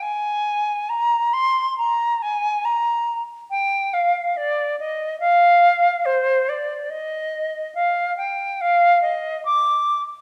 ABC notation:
X:1
M:4/4
L:1/8
Q:1/4=70
K:Eb
V:1 name="Flute"
a2 b c' b a b z | g f d e f2 c d | e2 f g f e d' z |]